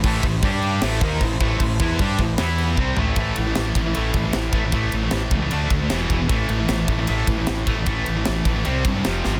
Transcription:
<<
  \new Staff \with { instrumentName = "String section" } { \time 4/4 \key a \minor \tempo 4 = 153 << { <c'' a'' c'''>4 <g' g'' d'''>4 <c'' a'' c'''>2~ | <c'' a'' c'''>2 <b' b'' e'''>4 <c'' a'' c'''>4 | r1 | r1 |
r1 | r1 | } \\ { e'4 d'4 e'2~ | e'1 | r1 | r1 |
r1 | r1 | } >> }
  \new Staff \with { instrumentName = "Distorted electric guitar" } { \clef bass \time 4/4 \key a \minor <a, e a>8 <a, e>8 <g d' g'>4 <a, e a>8 <dis bes dis'>8 <a, e>8 <a, e a>8 | <a, e>8 <e b e'>8 <g d' g'>8 <a, e>8 <e b e'>4 <c g c'>8 <a, e a>8 | <a, e a>8 <a, e>16 <a, e>16 <a, e>8 <a, e>16 <a, e>16 <a, e a>8 <a, e>16 <a, e>16 <a, e>8 <a, e a>16 <a, e>16 | <a, e a>8 <a, e>16 <a, e>16 <a, e>8 <a, e>16 <a, e>16 <d a d'>8 <d a>16 <d a>16 <e, b, e>8 <e, b, e>16 <e, b,>16 |
<a, e a>8 <a, e>16 <a, e>16 <a, e>8 <a, e>16 <a, e>16 <a, e a>8 <a, e>16 <a, e>16 <a, e>8 <a, e a>16 <a, e>16 | <a, e a>8 <a, e>16 <a, e>16 <a, e>8 <a, e>16 <a, e>16 <c g c'>8 <c g>16 <c g>16 <f, c f>8 <f, c f>16 <f, c>16 | }
  \new Staff \with { instrumentName = "Distorted electric guitar" } { \clef bass \time 4/4 \key a \minor <a, e a>8 <a, e>8 <g d' g'>4 <a, e a>8 <dis bes dis'>8 <a, e>8 <a, e a>8 | <a, e>8 <e b e'>8 <g d' g'>8 <a, e>8 <e b e'>4 <c g c'>8 <a, e a>8 | <a, e a>8 <a, e>16 <a, e>16 <a, e>8 <a, e>16 <a, e>16 <a, e a>8 <a, e>16 <a, e>16 <a, e>8 <a, e a>16 <a, e>16 | <a, e a>8 <a, e>16 <a, e>16 <a, e>8 <a, e>16 <a, e>16 <d a d'>8 <d a>16 <d a>16 <e, b, e>8 <e, b, e>16 <e, b,>16 |
<a, e a>8 <a, e>16 <a, e>16 <a, e>8 <a, e>16 <a, e>16 <a, e a>8 <a, e>16 <a, e>16 <a, e>8 <a, e a>16 <a, e>16 | <a, e a>8 <a, e>16 <a, e>16 <a, e>8 <a, e>16 <a, e>16 <c g c'>8 <c g>16 <c g>16 <f, c f>8 <f, c f>16 <f, c>16 | }
  \new Staff \with { instrumentName = "Distorted electric guitar" } { \clef bass \time 4/4 \key a \minor <a, e a>8 <a, e>8 <g d' g'>4 <a, e a>8 <dis bes dis'>8 <a, e>8 <a, e a>8 | <a, e>8 <e b e'>8 <g d' g'>8 <a, e>8 <e b e'>4 <c g c'>8 <a, e a>8 | <a, e a>2.~ <a, e a>8 <a, e a>8 | <a, e a>2 <d a d'>4 <e, b, e>4 |
<a, e a>2.~ <a, e a>8 <a, e a>8 | <a, e a>2 <c g c'>4 <f, c f>4 | }
  \new Staff \with { instrumentName = "Fingered electric bass" } { \clef bass \time 4/4 \key a \minor a,,8 a,,8 g,4 a,,8 dis,8 a,,8 a,,8 | a,,8 e,8 g,8 a,,8 e,4 c,8 a,,8 | a,,8 a,,8 a,,8 a,,8 a,,8 a,,8 a,,8 a,,8 | a,,8 a,,8 a,,8 cis,8 d,8 d,8 e,,8 e,,8 |
a,,8 a,,8 a,,8 a,,8 a,,8 a,,8 a,,8 a,,8 | a,,8 a,,8 a,,8 a,,8 c,8 g,8 f,,8 gis,,8 | }
  \new DrumStaff \with { instrumentName = "Drums" } \drummode { \time 4/4 <cymc bd>8 <cymc bd>8 <cymc bd>8 cymc8 <cymc sn>8 <cymc bd>8 <cymc bd>8 <cymc bd>8 | <cymc bd>8 <cymc bd>8 <cymc bd>8 <cymc bd>8 <cymc sn>8 cymc8 bd8 tomfh8 | <bd cymr>8 cymr8 <cymr sn>8 <bd cymr>8 cymr8 <bd cymr>8 <cymr sn>8 <bd cymr>8 | <bd cymr>8 cymr8 <cymr sn>8 <bd cymr>8 cymr8 <bd cymr>8 <cymr sn>8 <bd cymr>8 |
<bd cymr>8 cymr8 <cymr sn>8 <bd cymr>8 cymr8 <bd cymr>8 <cymr sn>8 <bd cymr>8 | <bd cymr>8 cymr8 <cymr sn>8 <bd cymr>8 cymr8 <bd cymr>8 <cymr sn>8 sn8 | }
>>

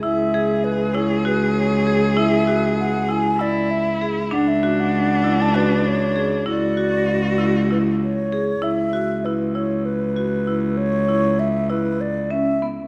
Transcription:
<<
  \new Staff \with { instrumentName = "Flute" } { \time 7/8 \key cis \phrygian \tempo 4 = 98 e''4 b'8 cis''8 b'8 cis''4 | e''4 fis''8 gis''8 d''8 e''8 r8 | fis''16 e''8 fis''4 a''16 b'8 cis''4 | d''2 b'8 cis''4 |
e''4 b'8 cis''8 b'4. | cis''4 e''8 b'8 d''8 e''8 r8 | }
  \new Staff \with { instrumentName = "Cello" } { \time 7/8 \key cis \phrygian gis'2.~ gis'8~ | gis'2 e'4. | d'2.~ d'8 | fis'2. r8 |
r2. r8 | r2. r8 | }
  \new Staff \with { instrumentName = "Marimba" } { \time 7/8 \key cis \phrygian e'8 gis'4 e'8 fis'4 gis'8 | e'8 fis'4 e'8 e'4 gis'8 | d'8 fis'4 e'8 fis'4 gis'8 | e'8 fis'4 e'8 e'4 gis'8 |
e'8 fis'8 e'8 e'4 fis'8 e'8~ | e'8 e'4 e'4 cis'8 b8 | }
  \new Staff \with { instrumentName = "Cello" } { \clef bass \time 7/8 \key cis \phrygian cis,2.~ cis,8~ | cis,2.~ cis,8 | cis,2.~ cis,8 | cis,2.~ cis,8 |
cis,2.~ cis,8~ | cis,2.~ cis,8 | }
>>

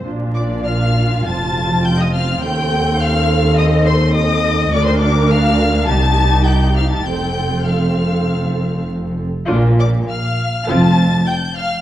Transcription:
<<
  \new Staff \with { instrumentName = "Violin section" } { \time 4/4 \key bes \major \tempo 4 = 102 r8 d'''8 f'''4 a'''4 g'''16 ees'''16 f'''8 | g'''4 f'''4 ees'''8 c'''8 ees'''4 | d'''16 c'''16 d'''8 f'''4 a'''4 g'''8 f'''16 a'''16 | g'''4 f'''2 r4 |
r8 d'''8 f'''4 a'''4 g'''8 f'''8 | }
  \new Staff \with { instrumentName = "Violin section" } { \time 4/4 \key bes \major r8 d''8 f''4 a''4 g''16 ees''16 f''8 | g''4 f''4 ees''8 c''8 ees''4 | d''16 c''16 d''8 f''4 a''4 g''8 f''16 a''16 | g''4 f''2 r4 |
r8 d''8 f''4 a''4 g''8 f''8 | }
  \new Staff \with { instrumentName = "Viola section" } { \time 4/4 \key bes \major << { f'1 | a'1 | bes'2 g'2 | a'2.~ a'8 r8 |
f'8 r4. f'8 r4. | } \\ { d'2 c'2~ | c'1 | d'2 ees'2 | c'2.~ c'8 r8 |
d'8 r4. c'8 r4. | } >> }
  \new Staff \with { instrumentName = "Cello section" } { \clef bass \time 4/4 \key bes \major bes,2 f,2 | ees,1 | d,2 c,2 | f,2.~ f,8 r8 |
bes,4 r4 f,4 r4 | }
  \new Staff \with { instrumentName = "Double bass section" } { \clef bass \time 4/4 \key bes \major bes,,2 f,,2 | ees,1 | d,2 c,2 | f,,2.~ f,,8 r8 |
bes,,4 r4 f,,4 r4 | }
>>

